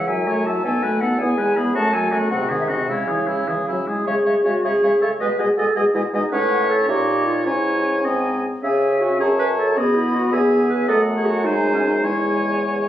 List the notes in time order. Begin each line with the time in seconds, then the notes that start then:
0.07 F#2 F#3 E4 E5 G#5
0.26 A3 F#4 C#5
0.45 F#3 E4 E5 A5
0.64 B2 B3 D#4 A4 G#5
0.83 A3 F#4 B4
1.00 B3 D#4 A4 F#5
1.19 E2 B3 E4 G#4 G#5
1.38 G#3 G#4 B4
1.56 B3 E4 G#4 B5
1.75 F#2 A3 C#4 F#4 A5
1.94 F#3 A3 A4 G#5
2.12 A3 C#4 F#4 G#5
2.30 G#2 C3 C4 F#4 F#5
2.50 D#3 D#4 G#4
2.60 E5
2.69 C3 C4 F#4 D#5
2.89 C#3 G#3 C#4 E4 C#5
3.08 E3 E4 G#4
3.28 G#3 C#4 E4
3.48 E3 E4 G#4
3.67 F#3 C#4 E4
3.86 G#3 E4 G#4
4.06 C#3 G#3 G#4 C#5 E5
4.26 C#3 G#3 C#5 E5
4.44 C#3 G#3 F#4 C#5 E5
4.64 C#3 G#3 G#4 C#5 E5
4.83 C#3 G#3 C#5 E5
5.01 C#3 G#3 A4 C#5 E5
5.20 B2 G#3 B4 D#5 G#5
5.39 B2 G#3 G#4 D#5 G#5
5.57 B2 G#3 A4 D#5 G#5
5.75 B2 G#3 G#4 D#5 G#5
5.94 B2 G#3 E4 D#5 G#5
6.13 B2 G#3 D#4 D#5 G#5
6.32 A2 C#4 B4 C#5 F#5
6.60 E5
6.70 A4
6.88 A#2 D#4 G4 C#5 D#5
7.26 F4
7.46 G#2 C#4 E4 C#5 G#5
8.04 G#2 C4 D#5 G#5
8.63 C#3 C#4 G#4 E5 G#5
9.01 F#4
9.20 F#2 C#4 G#4 C#5 A5
9.39 B4
9.58 A4
9.77 B2 B3 G#4 D#5 B5
9.95 E4
10.14 F#4
10.32 E2 B3 G#4 E5 G#5
10.70 B4
10.88 F#2 A3 A4 D#5 F#5
11.16 G#4 C#5
11.26 F#4
11.45 G#3 D#4 C5 G#5
11.74 C#4
11.84 D#4
12.04 E2 G#3 E4 C#5 G#5